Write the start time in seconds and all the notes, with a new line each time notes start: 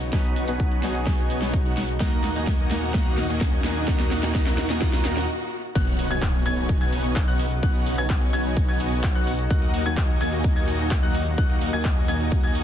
Already playing: B1 C#3 F#3 B3 D#4 F#4 B4, riser
0.01 closed hi-hat, shaker
0.12 B1 B2 B3 C#4 D#4 F#4 B4 C#5 F#5, kick, snare, closed hi-hat, shaker
0.25 closed hi-hat, shaker
0.36 open hi-hat, shaker
0.47 B1 B2 B3 C#4 D#4 F#4 B4 C#5 G#5, closed hi-hat, shaker
0.60 kick, closed hi-hat, shaker
0.72 closed hi-hat, shaker
0.82 B1 B2 B3 C#4 D#4 F#4 G#4 C#5 G#5, snare, open hi-hat, shaker
0.95 closed hi-hat, shaker
1.07 kick, snare, closed hi-hat, shaker
1.18 B1 B3 D#4 F#4 C#5 G#5, closed hi-hat, shaker
1.30 open hi-hat, shaker
1.42 snare, closed hi-hat, shaker
1.53 kick, closed hi-hat, shaker
1.65 B1 B3 D#4 F#4 C#5 F#5, closed hi-hat, shaker
1.77 snare, open hi-hat, shaker
1.89 closed hi-hat, shaker
2.00 D#2 A#2 D#3 A#3 D#4 F#4 A#4 D#5 F#5, kick, snare, closed hi-hat, shaker
2.12 closed hi-hat, shaker
2.24 snare, open hi-hat, shaker
2.35 D#2 D#3 A#3 D#4 F#4 A#4 D#5 G#5, closed hi-hat, shaker
2.47 kick, snare, closed hi-hat, shaker
2.59 closed hi-hat, shaker
2.70 D#2 D#3 A#3 D#4 F#4 A#4 D#5 G#5, snare, open hi-hat, shaker
2.82 closed hi-hat, shaker
2.94 D#2 D#3 A#3 D#4 F#4 A#4 F#5, kick, snare, closed hi-hat, shaker
3.06 closed hi-hat, shaker
3.18 snare, open hi-hat, shaker
3.29 D#2 D#3 A#3 D#4 F#4 A#4 D#5 G#5, closed hi-hat, shaker
3.41 kick, snare, closed hi-hat, shaker
3.53 closed hi-hat, shaker
3.63 D#2 D#3 A#3 D#4 F#4 A#4 D#5 G#5, snare, open hi-hat, shaker
3.76 closed hi-hat, shaker
3.87 D#2 D#3 A#3 D#4 F#4 A#4 D#5 F#5, kick, snare, closed hi-hat, shaker
4.00 snare, closed hi-hat, shaker
4.11 snare, open hi-hat, shaker
4.22 D#2 D#3 A#3 D#4 F#4 A#4 D#5 G#5, snare, closed hi-hat, shaker
4.34 D#2 D#3 A#3 D#4 F#4 A#4 D#5 F#5, kick, snare, closed hi-hat, shaker
4.46 snare, closed hi-hat, shaker
4.58 snare, open hi-hat, shaker
4.69 D#2 D#3 A#3 D#4 F#4 A#4 D#5 G#5, snare, closed hi-hat, shaker
4.81 D#2 D#3 A#3 D#4 F#4 A#4 D#5 F#5, kick, snare, closed hi-hat, shaker
4.93 snare, closed hi-hat, shaker
5.04 D#2 D#3 A#3 D#4 F#4 A#4 D#5 F#5, snare, open hi-hat, shaker
5.17 snare, closed hi-hat, shaker
5.75 B1 C#3 F#3 B3 D#4 F#4 C#5 F#5 F#6, kick, closed hi-hat, crash, impact, shaker
5.87 closed hi-hat, shaker
5.99 open hi-hat, shaker
6.11 B1 B3 D#4 F#4 C#5 G#5 G#6, closed hi-hat, shaker
6.22 kick, clap, closed hi-hat, shaker
6.34 closed hi-hat, shaker
6.46 B1 B3 D#4 F#4 C#5 G#5 G#6, open hi-hat, shaker
6.57 closed hi-hat, shaker
6.69 kick, closed hi-hat, shaker
6.81 B1 B3 D#4 F#4 C#5 G#5 G#6, closed hi-hat, shaker
6.93 open hi-hat, shaker
7.04 closed hi-hat, shaker
7.16 kick, clap, closed hi-hat, shaker
7.28 B1 B3 D#4 F#4 C#5 F#5 F#6, closed hi-hat, shaker
7.39 open hi-hat, shaker
7.51 closed hi-hat, shaker
7.63 B1 B3 D#4 F#4 C#5 F#5 F#6, kick, closed hi-hat, shaker
7.75 closed hi-hat, shaker
7.86 open hi-hat, shaker
7.98 B1 B3 D#4 F#4 C#5 G#5 G#6, closed hi-hat, shaker
8.10 kick, clap, closed hi-hat, shaker
8.22 closed hi-hat, shaker
8.33 B1 B3 D#4 F#4 C#5 G#5 G#6, open hi-hat, shaker
8.45 closed hi-hat, shaker
8.57 kick, closed hi-hat, shaker
8.68 B1 B3 D#4 F#4 C#5 G#5 G#6, closed hi-hat, shaker
8.80 open hi-hat, shaker
8.92 closed hi-hat, shaker
9.04 kick, clap, closed hi-hat, shaker
9.15 B1 B3 D#4 F#4 C#5 F#5 F#6, closed hi-hat, shaker
9.27 open hi-hat, shaker
9.39 closed hi-hat, shaker
9.50 D#2 A#2 D#3 A#3 D#4 F#4 D#5 F#5 F#6, kick, closed hi-hat, shaker
9.62 closed hi-hat, shaker
9.74 open hi-hat, shaker
9.86 D#2 A#3 D#4 F#4 D#5 G#5 G#6, closed hi-hat, shaker
9.97 kick, clap, closed hi-hat, shaker
10.09 closed hi-hat, shaker
10.21 D#2 A#3 D#4 F#4 D#5 G#5 G#6, open hi-hat, shaker
10.33 closed hi-hat, shaker
10.44 kick, closed hi-hat, shaker
10.56 D#2 A#3 D#4 F#4 D#5 G#5 G#6, closed hi-hat, shaker
10.68 open hi-hat, shaker
10.79 closed hi-hat, shaker
10.91 kick, clap, closed hi-hat, shaker
11.03 D#2 A#3 D#4 F#4 D#5 F#5 F#6, closed hi-hat, shaker
11.15 open hi-hat, shaker
11.26 closed hi-hat, shaker
11.38 D#2 A#3 D#4 F#4 D#5 F#5 F#6, kick, closed hi-hat, shaker
11.50 closed hi-hat, shaker
11.61 open hi-hat, shaker
11.73 D#2 A#3 D#4 F#4 D#5 G#5 G#6, closed hi-hat, shaker
11.85 kick, clap, closed hi-hat, shaker
11.96 closed hi-hat, shaker
12.08 D#2 A#3 D#4 F#4 D#5 G#5 G#6, open hi-hat, shaker
12.20 closed hi-hat, shaker
12.32 kick, closed hi-hat, shaker
12.43 D#2 A#3 D#4 F#4 D#5 G#5 G#6, closed hi-hat, shaker
12.55 open hi-hat, shaker